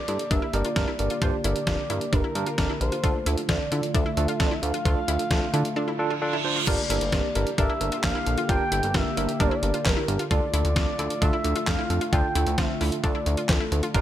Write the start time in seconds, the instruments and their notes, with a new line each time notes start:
Already playing: analog synth pad D3 A#3 G4, analog synth lead D5
0.08 analog synth bass G2, tine electric piano D4 G4 A4, synth arpeggio sound E4, closed hi-hat
0.19 closed hi-hat
0.31 analog synth bass G1, synth arpeggio sound D4, tine electric piano D4 G4 A#4, analog synth lead E5, kick, closed hi-hat
0.42 synth arpeggio sound E4
0.53 analog synth bass G1, tine electric piano D4 G4 A#4, analog synth lead D5, closed hi-hat
0.65 synth arpeggio sound F4, closed hi-hat
0.76 analog synth bass G1, tine electric piano D4 G4 A#4, kick, snare, closed hi-hat
0.88 synth arpeggio sound E4
0.99 analog synth bass G1, tine electric piano D4 G4 A#4, analog synth lead D5, closed hi-hat
1.10 synth arpeggio sound F4, closed hi-hat
1.22 analog synth bass G1, tine electric piano D4 G4 C5, synth arpeggio sound F4, kick, closed hi-hat
1.44 analog synth bass G1, tine electric piano D4 G4 A#4, synth arpeggio sound E4, analog synth lead D5, closed hi-hat
1.56 closed hi-hat
1.67 analog synth bass G1, tine electric piano D4 G4 A#4, synth arpeggio sound F4, kick, snare, closed hi-hat
1.90 analog synth bass G2, tine electric piano D4 G4 A#4, synth arpeggio sound E4, closed hi-hat
2.01 closed hi-hat
2.13 analog synth bass G1, synth arpeggio sound D4, tine electric piano D4 G4 A#4, analog synth lead A#4, kick, closed hi-hat
2.24 synth arpeggio sound E4
2.35 analog synth bass G2, tine electric piano D4 G4 A#4, closed hi-hat
2.46 synth arpeggio sound F4, closed hi-hat
2.58 analog synth bass G1, tine electric piano D4 G4 A#4, kick, snare, closed hi-hat
2.69 synth arpeggio sound E4
2.81 analog synth bass A#1, tine electric piano D4 G4 A#4, analog synth lead C5, closed hi-hat
2.92 synth arpeggio sound F4, closed hi-hat
3.03 analog synth bass D2, analog synth pad A3 F4, tine electric piano D4 F4 A4, synth arpeggio sound F4, kick, closed hi-hat
3.26 analog synth bass D2, tine electric piano D4 F4 A4, synth arpeggio sound E4, closed hi-hat
3.38 closed hi-hat
3.49 analog synth bass D2, tine electric piano D4 F4 A4, synth arpeggio sound F4, analog synth lead D5, kick, snare, closed hi-hat
3.72 analog synth bass D3, tine electric piano D4 F4 A4, synth arpeggio sound E4, closed hi-hat
3.83 closed hi-hat
3.94 analog synth bass D2, tine electric piano D4 F4 A4, synth arpeggio sound D4, analog synth lead E5, kick, closed hi-hat
4.06 synth arpeggio sound E4
4.17 analog synth bass D2, tine electric piano D4 F4 A4, closed hi-hat
4.26 synth arpeggio sound F4, analog synth lead F5, closed hi-hat
4.35 analog synth lead E5
4.40 analog synth bass D2, tine electric piano D4 F4 A4, kick, snare, closed hi-hat
4.44 analog synth lead D5
4.51 synth arpeggio sound E4, analog synth lead E5
4.62 analog synth bass D2, tine electric piano D4 F4 A4, analog synth lead F5, closed hi-hat
4.74 synth arpeggio sound F4, closed hi-hat
4.85 analog synth bass D2, tine electric piano D4 F4 A4, synth arpeggio sound F4, kick, closed hi-hat
5.08 analog synth bass D2, tine electric piano D4 F4 A4, synth arpeggio sound E4, closed hi-hat
5.19 closed hi-hat
5.31 analog synth bass D2, tine electric piano D4 F4 A4, synth arpeggio sound F4, kick, snare, closed hi-hat
5.54 analog synth bass D3, tine electric piano D4 F4 A4, synth arpeggio sound E4, closed hi-hat
5.65 closed hi-hat
5.76 synth arpeggio sound D4, tine electric piano D4 F4 A4, reverse cymbal
5.88 synth arpeggio sound E4
5.99 tine electric piano D4 F4 A4
6.10 synth arpeggio sound F4
6.22 tine electric piano D4 F4 A4
6.33 synth arpeggio sound E4
6.45 tine electric piano D4 F4 C5
6.56 synth arpeggio sound F4
6.67 analog synth bass G1, analog synth pad D3 A#3 G4, tine electric piano D4 G4 A#4, synth arpeggio sound F4, analog synth lead D5, kick, closed hi-hat, crash
6.90 analog synth bass G1, tine electric piano D4 G4 A#4, synth arpeggio sound E4, closed hi-hat
7.01 analog synth bass G1, closed hi-hat
7.12 analog synth bass G1, tine electric piano D4 G4 A#4, synth arpeggio sound F4, kick, snare, closed hi-hat
7.35 analog synth bass G1, tine electric piano D4 G4 A#4, synth arpeggio sound E4, closed hi-hat
7.47 closed hi-hat
7.58 analog synth bass G1, synth arpeggio sound D4, tine electric piano D4 G4 A#4, analog synth lead E5, kick, closed hi-hat
7.70 synth arpeggio sound E4
7.81 analog synth bass G1, tine electric piano D4 G4 A#4, closed hi-hat
7.92 synth arpeggio sound F4, closed hi-hat
8.04 analog synth bass A#1, tine electric piano D4 G4 A#4, analog synth lead F5, kick, snare, clap, closed hi-hat
8.15 synth arpeggio sound E4
8.26 analog synth bass A#1, tine electric piano D4 G4 A4, closed hi-hat
8.38 synth arpeggio sound F4, closed hi-hat
8.49 analog synth bass G1, tine electric piano D4 G4 A#4, synth arpeggio sound F4, analog synth lead G5, kick, closed hi-hat
8.72 analog synth bass G1, tine electric piano D4 G4 A4, synth arpeggio sound E4, closed hi-hat
8.83 analog synth bass G1, closed hi-hat
8.94 analog synth bass G1, tine electric piano D4 G4 A#4, synth arpeggio sound F4, analog synth lead E5, kick, snare, closed hi-hat
9.17 analog synth bass G1, tine electric piano D4 G4 A#4, synth arpeggio sound E4, closed hi-hat
9.29 closed hi-hat
9.40 analog synth bass G1, synth arpeggio sound D4, tine electric piano D4 G4 A#4, analog synth lead D5, kick, closed hi-hat
9.47 analog synth lead C5
9.51 synth arpeggio sound E4, analog synth lead D5
9.63 analog synth bass G1, tine electric piano D4 G4 A#4, closed hi-hat
9.74 synth arpeggio sound F4, closed hi-hat
9.85 analog synth bass G1, tine electric piano D4 G4 A#4, analog synth lead A#4, kick, snare, clap, closed hi-hat
9.97 synth arpeggio sound E4
10.08 analog synth bass G1, tine electric piano D4 G4 A#4, closed hi-hat
10.19 synth arpeggio sound F4, closed hi-hat
10.31 analog synth bass D2, analog synth pad D3 A3 F4, tine electric piano D4 F4 A4, synth arpeggio sound F4, analog synth lead D5, kick, closed hi-hat
10.54 analog synth bass D2, tine electric piano D4 F4 A4, synth arpeggio sound E4, closed hi-hat
10.65 analog synth bass D2, closed hi-hat
10.76 analog synth bass D2, tine electric piano D4 F4 A4, synth arpeggio sound F4, kick, snare, closed hi-hat
10.99 analog synth bass D2, tine electric piano D4 F4 A4, synth arpeggio sound E4, closed hi-hat
11.10 closed hi-hat
11.22 analog synth bass D2, tine electric piano D4 F4 A4, synth arpeggio sound D4, analog synth lead E5, kick, closed hi-hat
11.33 synth arpeggio sound E4
11.44 analog synth bass D2, tine electric piano D4 F4 A4, closed hi-hat
11.56 synth arpeggio sound F4, closed hi-hat
11.67 analog synth bass F2, tine electric piano D4 F4 A4, analog synth lead F5, kick, snare, clap, closed hi-hat
11.79 synth arpeggio sound E4
11.90 analog synth bass F2, tine electric piano D4 F4 A4, closed hi-hat
12.01 synth arpeggio sound F4, closed hi-hat
12.13 analog synth bass D2, tine electric piano D4 F4 A4, synth arpeggio sound F4, analog synth lead G5, kick, closed hi-hat
12.35 analog synth bass D2, tine electric piano D4 F4 A4, synth arpeggio sound E4, closed hi-hat
12.47 analog synth bass D2, closed hi-hat
12.58 analog synth bass D2, tine electric piano D4 F4 C5, synth arpeggio sound F4, analog synth lead E5, kick, snare, closed hi-hat
12.81 analog synth bass D2, tine electric piano D4 F4 A4, synth arpeggio sound E4, open hi-hat
12.92 closed hi-hat
13.03 analog synth bass D2, synth arpeggio sound D4, tine electric piano D4 F4 A4, analog synth lead D5, kick, closed hi-hat
13.15 synth arpeggio sound E4
13.26 analog synth bass D2, tine electric piano D4 F4 A4, closed hi-hat
13.37 synth arpeggio sound F4, closed hi-hat
13.49 analog synth bass D2, tine electric piano D4 F4 A4, analog synth lead A4, kick, snare, clap, closed hi-hat
13.60 synth arpeggio sound E4
13.72 analog synth bass D2, tine electric piano D4 F4 A4, closed hi-hat
13.83 synth arpeggio sound F4, closed hi-hat
13.94 analog synth bass G1, analog synth pad A#3, tine electric piano D4 G4 A#4, synth arpeggio sound F4, kick, closed hi-hat